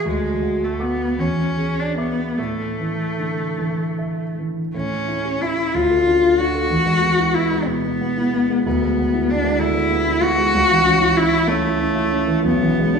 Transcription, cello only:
0.08 G#3
0.64 A3
0.82 B3
1.19 C#4
1.79 D4
1.97 B3
2.38 A3
4.75 C#4
5.41 E4
5.74 F4
6.39 F#4
7.34 E4
7.67 B3
8.65 B3
9.30 D4
9.60 E4
10.22 F#4
11.17 E4
11.47 A3
12.45 B3

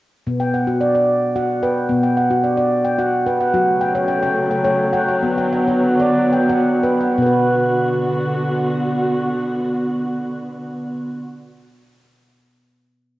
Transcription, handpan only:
0.27 B2 B3
0.40 G5
0.54 F#5
0.67 F#4
0.81 D5
0.95 D5
1.36 F#4 F#5
1.63 B4 G5
1.89 B2 B3
2.03 G5
2.17 F#5
2.30 F#4
2.44 D5
2.57 D5
2.85 G5
2.98 F#4 F#5
3.26 B4 G5
3.40 F#5
3.53 F#3 F#4
3.81 G5
3.95 C#5
4.08 G5
4.22 G5
4.51 G5
4.64 C#5 G5
4.93 F#5 G5
5.09 G5
5.23 B3
5.38 G5
5.53 F#5
5.68 F#4
6.00 D5
6.33 G5
6.49 F#4 F#5
6.83 B4 G5
7.01 F#5
7.18 B2 B3
7.22 B4
7.26 B4

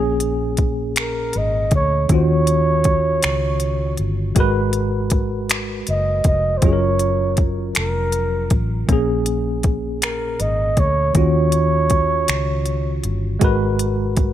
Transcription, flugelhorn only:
0.99 A#4
1.38 D#5
1.75 C#5
2.15 C#5
5.90 D#5
6.27 D#5
6.57 C5
6.65 C#5
7.76 A#4
10.03 A#4
10.41 D#5
10.79 C#5
11.16 C#5

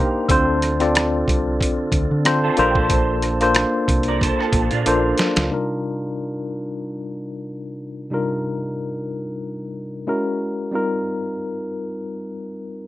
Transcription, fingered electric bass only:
0.30 D2
1.29 C2
1.93 D2
2.11 D3
2.59 A#1
3.89 C2
4.54 A#1
4.72 A#2
4.87 A#1
5.37 C#2

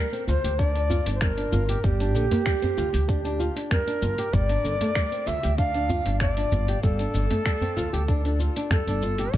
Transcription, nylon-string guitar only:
0.12 C4
0.27 F4
0.44 G4
0.59 D4
0.75 D4
0.90 F4
1.06 D4
1.21 G3
1.37 D4
1.52 F4
1.69 G4
1.84 G3
2.00 D4
2.15 D3
2.31 A#3
2.46 G3
2.62 C4
2.77 F4
2.93 G4
3.08 D4
3.24 D4
3.39 F4
3.56 D4
3.71 G3
3.87 D4
4.02 F4
4.18 G4
4.33 G3
4.49 D4
4.64 D3
4.81 A3
4.95 G3
5.12 C4
5.26 F4
5.43 G4
5.58 D4
5.75 D4
5.90 F4
6.06 D4
6.21 G3
6.37 D4
6.52 F4
6.69 G4
6.83 G3
7.00 D4
7.14 D3
7.31 A3
7.46 G3
7.62 C4
7.76 F4
7.93 G4
8.08 D4
8.25 D4
8.40 F4
8.56 D4
8.71 G3
8.88 D4
9.03 F4
9.19 G4
9.34 G3

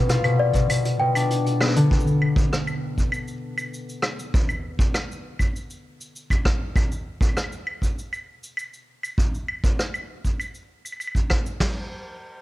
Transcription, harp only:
Already playing: B2 E4
0.09 F4
0.24 B2
0.54 B2
0.70 B2
1.00 B2
1.15 D4
1.61 B3
1.76 D3

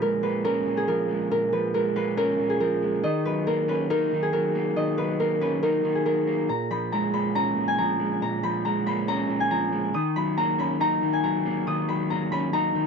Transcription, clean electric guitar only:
Already playing: A#2 F3
0.02 G#3
0.23 A#3
0.45 C#4
0.66 A#2
0.88 F3
1.09 G#3
1.31 A#2
1.53 F3
1.74 G#3
1.96 A#3
2.17 C#4
2.39 A#2
2.60 F3
2.82 G#3
3.04 D#3
3.26 F#3
3.47 A#3
3.68 C#4
3.90 D#4
4.12 D#3
4.33 F#3
4.55 A#3
4.77 D#3
4.98 F#3
5.20 A#3
5.42 C#4
5.63 D#4
5.85 D#3
6.06 F#3
6.27 A#3
6.49 A#2
6.71 F3
6.93 G#3
7.14 A#3
7.35 C#4
7.57 A#2
7.78 F3
8.00 G#3
8.22 A#2
8.44 F3
8.65 G#3
8.86 A#3
9.08 C#4
9.29 A#2
9.51 F3
9.72 G#3
9.94 D#3
10.16 F#3
10.38 A#3
10.59 C#4
10.80 D#4
11.03 D#3
11.24 F#3
11.46 A#3
11.67 D#3
11.89 F#3
12.11 A#3
12.32 C#4
12.54 D#4
12.75 D#3

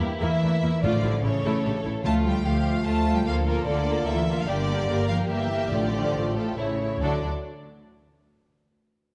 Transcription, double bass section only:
0.01 E2
0.22 E2
0.42 E2
0.62 E2
0.83 A1
1.04 A1
1.23 A1
1.43 A1
1.64 A1
1.85 A1
2.05 D2
2.45 D2
2.85 D2
3.25 D2
3.67 D2
4.07 D2
4.48 G1
4.89 G1
5.30 G1
5.71 A1
6.14 A1
6.58 A1
7.01 D2

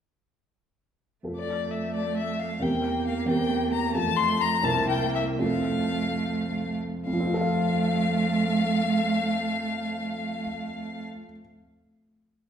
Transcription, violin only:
1.36 D5
1.71 E5
1.94 D5
2.17 E5
2.40 F5
2.62 G5
3.07 F5
3.28 G5
3.73 A#5
3.95 A5
4.16 C6
4.41 A#5
4.64 A5
4.89 G5
5.15 E5
5.40 F5
7.06 F5

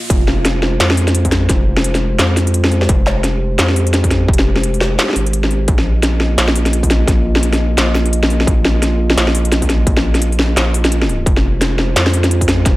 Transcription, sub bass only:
0.10 F1
0.80 F2
1.49 F1
2.19 F2
2.89 F1
3.59 F2
4.28 F1
5.16 G#1
5.68 A#1
6.38 A#1
7.07 A#1
7.78 A#1
8.47 A#1
9.17 A#1
9.87 A#1
10.57 A#1
11.26 F1
11.96 F2
12.66 F1

